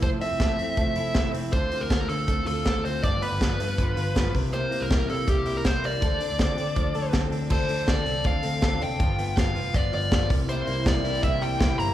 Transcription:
<<
  \new Staff \with { instrumentName = "Lead electric guitar" } { \time 4/4 \key d \minor \tempo 4 = 161 c''8 e''2. r8 | c''8. bes'8. a'4 a'4 c''8 | d''8 b'2. r8 | c''8. bes'8. a'8 g'8. bes'16 c''8 d''8~ |
d''2. r4 | c''4 d''4 f''4. g''8~ | g''4 f''4 d''8 d''4 r8 | c''4 d''4 e''8 g''8 g''8 bes''8 | }
  \new Staff \with { instrumentName = "String section" } { \time 4/4 \key d \minor r1 | r1 | r1 | r1 |
r1 | r1 | r1 | <e bes' c'' g''>1 | }
  \new Staff \with { instrumentName = "Twelve-string acoustic guitar" } { \time 4/4 \key d \minor <f a c' e'>8 <a c' e'>8 <f a c' e'>8 <a c' e'>8 <f a c' e'>8 <a c' e'>8 <f a c' e'>8 <a c' e'>8 | <d a c' f'>8 <a c' f'>8 <d a c' f'>8 <a c' f'>8 <d a c' f'>8 <a c' f'>8 <d a c' f'>8 <a c' f'>8 | <g, d f b f'>8 <f b f'>8 <g, d f b f'>8 <f b f'>8 <d f b f'>8 <f b f'>8 <g, d f b f'>8 <g bes e'>8 | <c g bes e'>8 <g bes e'>8 <c g bes e'>8 <g bes e'>8 <c g bes e'>8 <g bes e'>8 <c g bes e'>8 <g bes e'>8 |
<d f c' d' a'>8 <c' d' a'>8 <d f c' d' a'>8 <c' d' a'>8 <f c' d' a'>8 <c' d' a'>8 <d f c' d' a'>8 <c' d' a'>8 | <d f c' d' a'>8 <c' d' a'>8 <d f c' d' a'>8 <c' d' a'>8 <f c' d' a'>8 <c' d' a'>8 <d f c' d' a'>8 <c' d' a'>8 | <g, d f b f'>8 <f b f'>8 <g, d f b f'>8 <f b f'>8 <d f b f'>8 <f b f'>8 <g, d f b f'>8 <g bes e'>8 | <c g bes e'>8 <g bes e'>8 <c g bes e'>8 <g bes e'>8 <c g bes e'>8 <g bes e'>8 <c g bes e'>8 <g bes e'>8 | }
  \new Staff \with { instrumentName = "Clean electric guitar" } { \time 4/4 \key d \minor f8 c'8 a8 c'8 a8 e'8 a8 c'8 | d8 c'8 a8 bes16 c'16 a8 f'8 a8 c'8 | g,8 b8 f8 a16 b16 d8 f'8 f8 c8 | c8 bes8 g8 bes8 g8 e'8 g8 bes8 |
d8 d'8 c'8 c'16 d'16 f8 a'8 c'8 d'8 | <d a'>8 d'8 c'8 a'8 d'8 c'8 a'8 d'8 | <g, f'>8 b8 f8 f'8 b8 f8 f'8 c8 | <c e'>8 bes8 g8 e'8 bes8 g8 e'8 bes8 | }
  \new Staff \with { instrumentName = "Picked electric bass" } { \clef bass \time 4/4 \key d \minor f,,8 r16 f,,16 f,,8 f,8 f,,8 f,,8 f,,8 f,,8 | d,8 r16 d,16 d,8 d8 d,8 d,8 d,8 d,8 | g,,8 r16 g,,16 g,,8 g,8 g,,8 g,,8 g,,8 c,8~ | c,8 r16 c,16 c,8 c8 c,8 c,8 c,8 c,8 |
d,8 r16 d,16 d,8 d8 d,8 d,8 d,8 d,8 | d,8 d,8 d,8 c,8 d,8 d,8 d,8 f,,8 | g,,8 g,,8 g,,8 f,,8 g,,8 g,,8 g,,8 c,8~ | c,8 c,8 c,8 c,8 c,8 c,8 c,8 g,,8 | }
  \new DrumStaff \with { instrumentName = "Drums" } \drummode { \time 4/4 <hh bd>8 hho8 <hh bd sn>8 hho8 <hh bd>8 hho8 <hh bd sn>8 hho8 | <hh bd>8 hho8 <hh bd sn>8 hho8 <hh bd>8 hho8 <hh bd sn>8 hho8 | <hh bd>8 hho8 <hh bd sn>8 hho8 <hh bd>8 hho8 <hh bd sn>8 <hho bd>8 | hh8 hho8 <hh bd sn>8 hho8 <hh bd>8 hho8 <hh bd sn>8 hho8 |
<hh bd>8 hho8 <hh bd sn>8 hho8 <hh bd>8 hho8 <hh bd sn>8 hho8 | <cymc bd>8 hho8 <hh bd sn>8 hho8 <hh bd>8 hho8 <hh bd sn>8 hho8 | <hh bd>8 hho8 <hh bd sn>8 hho8 <hh bd>8 hho8 <hh bd sn>8 <hho bd>8 | hh8 hho8 <hh bd sn>8 hho8 <hh bd>8 hho8 <hh bd sn>8 hho8 | }
>>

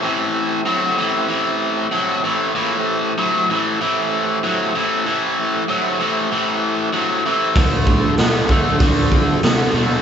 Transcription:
<<
  \new Staff \with { instrumentName = "Tonewheel organ" } { \time 4/4 \key a \minor \tempo 4 = 96 <a c' e' g'>1 | \tuplet 3/2 { <bes f' gis' cis''>8 <a e' g' c''>4~ } <a e' g' c''>2. | <a e' g' c''>1 | \tuplet 3/2 { <bes dis' fis' cis''>8 <a d' f' c''>4~ } <a d' f' c''>2. | }
  \new Staff \with { instrumentName = "Overdriven electric guitar" } { \clef bass \time 4/4 \key a \minor <a, e>4 <a, fis>8 <a, e>8 <a, e>4 <a, fis>8 <a, e>8 | <a, e>4 <a, fis>8 <a, e>8 <a, e>4 <a, fis>8 <a, e>8 | <a, e>4 <a, fis>8 <a, e>8 <a, e>4 <a, fis>8 <a, e>8 | <d a>4 <d b>8 <d a>8 <d a>4 <d b>8 <d a>8 | }
  \new Staff \with { instrumentName = "Picked electric bass" } { \clef bass \time 4/4 \key a \minor r1 | r1 | r1 | d,8 a,8 b,8 d8 d8 d8 c8 b,8 | }
  \new DrumStaff \with { instrumentName = "Drums" } \drummode { \time 4/4 r4 r4 r4 r4 | r4 r4 r4 r4 | r4 r4 r4 r4 | <hho bd>8 bd8 <hho sn>8 bd8 <hho bd>8 bd8 <hho sn>4 | }
>>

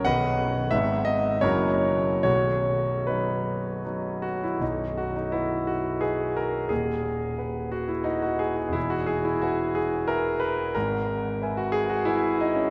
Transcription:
\new Staff \with { instrumentName = "Grand piano" } { \time 3/4 \key b \major \tempo 4 = 88 << { <b' dis'' fis''>4 e''8 dis''8 <fis' ais' cis''>4 | <fis' cis''>4 <dis' fis' b'>4. fis'16 e'16 | dis'8 fis'16 dis'16 e'8 fis'8 gis'8 ais'8 | gis'4. fis'16 e'16 dis'16 fis'16 gis'16 fis'16 |
e'16 fis'16 gis'16 e'16 fis'8 gis'8 ais'8 b'8 | ais'4~ ais'16 fis'16 gis'16 fis'16 e'8 dis'16 cis'16 | } \\ { <b,,, b,, dis b dis'>4 <gis,, gis, dis b dis'>4 <fis,, fis, fis ais e'>4 | <b,,, b,,>4 <fis b>4 <fis b dis'>4 | <b,,, b,,>4 <b' dis'' fis''>4 <b' dis'' fis''>4 | <dis,, dis,>4 <b' fis''>4 <b' fis''>4 |
<e,, e,>4 <b' e'' gis''>4 <b' e'' gis''>4 | <gis,, gis,>4 <b' e'' gis''>4 <b' e'' gis''>4 | } >> }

